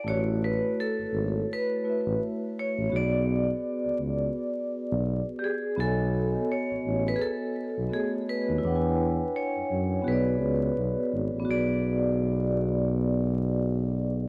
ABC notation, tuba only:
X:1
M:4/4
L:1/16
Q:"Swing 16ths" 1/4=84
K:Bdor
V:1 name="Tuba" clef=bass
A,,,4 z G,,, G,,,2 z3 A,,, z3 A,,, | B,,,4 z C,, C,,2 z3 B,,,2 z3 | B,,,4 z A,,, A,,,2 z3 B,,, z3 ^D,, | E,,4 z F,, F,,2 B,,,2 C,,2 B,,, z G,,, A,,, |
B,,,16 |]